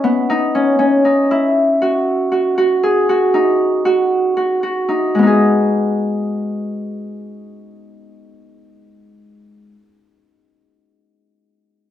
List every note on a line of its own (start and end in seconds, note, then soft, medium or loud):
0.00 3.14 B3 medium
0.00 0.54 C#4 medium
0.00 0.29 D#4 medium
0.30 1.04 D#4 medium
0.55 0.79 C#4 medium
0.79 3.69 C#4 medium
1.05 1.37 D#4 soft
1.31 3.40 E4 medium
1.82 2.31 F#4 soft
2.32 2.57 F#4 soft
2.58 3.09 F#4 medium
2.83 5.11 G#4 soft
3.09 3.85 F#4 medium
3.34 4.88 D#4 soft
3.85 4.36 F#4 medium
4.37 4.63 F#4 soft
4.63 7.07 F#4 soft
4.89 5.22 D#4 soft
5.15 9.72 G#3 soft
5.19 9.76 B3 soft
5.19 9.80 D#4 soft
5.27 9.84 G#4 soft